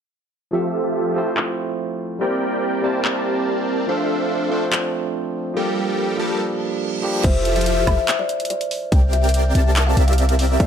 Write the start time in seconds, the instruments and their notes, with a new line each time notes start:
0.51 tine electric piano F3 A3 C4 A4 E5, supersaw synth F3 F4 G4 A4 E5
1.14 tine electric piano F3 A3 C4 E4, supersaw synth F3 F4 G4 A4 E5
1.18 tine electric piano C5
1.37 clap
2.19 tine electric piano G3 A#3 C4 E4, supersaw synth C4 G4 A#4 D5 G5
2.23 tine electric piano A#4
2.82 tine electric piano G3 A#3 C4 E4 C5, supersaw synth C4 G4 A#4 D5 A5
3.05 clap
3.87 tine electric piano F3 A3 C4 D4, supersaw synth D4 A4 C5 E5 F5
3.91 tine electric piano A4
4.49 tine electric piano F3 A3 C4 D4, supersaw synth D4 A4 C5 E5 F5
4.53 tine electric piano C5
4.72 clap
5.54 tine electric piano F3 G3 A#3 D4 G4, supersaw synth G3 G4 A4 A#4 G5
6.17 tine electric piano F3 G3 A#3 D4, supersaw synth G3 G4 A4 A#4 A5
6.21 tine electric piano A4
6.40 reverse cymbal
7.02 tine electric piano F3 G3 A#3 D4 G4
7.24 808-style bass F1, supersaw synth F3 F4 G4 A4 E5, kalimba C5, digital synth lead E5, kick, closed hi-hat, crash
7.45 closed hi-hat
7.56 kalimba E5, closed hi-hat
7.61 closed hi-hat
7.66 closed hi-hat
7.87 808-style bass F1, supersaw synth F3 F4 G4 A4 E5, kick, closed hi-hat, high woodblock
8.08 clap, closed hi-hat
8.19 kalimba D5
8.29 closed hi-hat
8.40 closed hi-hat
8.45 closed hi-hat
8.50 kalimba D5, closed hi-hat
8.61 closed hi-hat
8.71 open hi-hat
8.92 808-style bass C2, supersaw synth C4 G4 A#4 D5 G5, digital synth lead G5, kick, closed hi-hat
9.13 kalimba E5, closed hi-hat
9.24 closed hi-hat
9.29 closed hi-hat
9.34 closed hi-hat
9.55 808-style bass C2, supersaw synth C4 G4 A#4 D5 A5, kalimba E5, digital synth lead A5, closed hi-hat
9.76 clap, closed hi-hat
9.87 kalimba F5
9.97 808-style bass C2, supersaw synth C4 G4 A#4 D5 E5, digital synth lead E5, closed hi-hat
10.08 kalimba F5, closed hi-hat
10.13 closed hi-hat
10.18 closed hi-hat
10.29 closed hi-hat
10.39 open hi-hat
10.60 808-style bass D2, supersaw synth D4 A4 C5 E5 F5, kalimba D5, digital synth lead F5, kick, closed hi-hat